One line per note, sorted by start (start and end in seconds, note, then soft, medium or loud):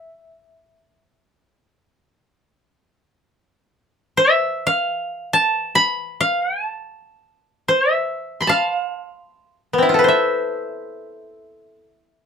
0.00 1.28 E5 medium
4.17 4.73 E5 medium
4.67 6.11 F5 medium
5.33 6.20 A5 medium
5.75 6.92 B5 medium
6.21 6.67 F5 medium
6.67 7.62 A5 medium
7.68 7.94 C5 medium
7.94 8.55 E5 medium
8.41 9.59 B5 soft
8.41 9.54 C6 soft
8.47 9.99 F5 medium
8.47 9.73 A5 soft
9.73 10.10 B3 soft
9.78 10.05 C4 soft
9.82 12.09 E4 soft
9.89 10.14 F4 soft
9.94 11.84 A4 soft
9.99 11.76 B4 soft
10.04 11.76 C5 soft
10.08 12.26 E5 soft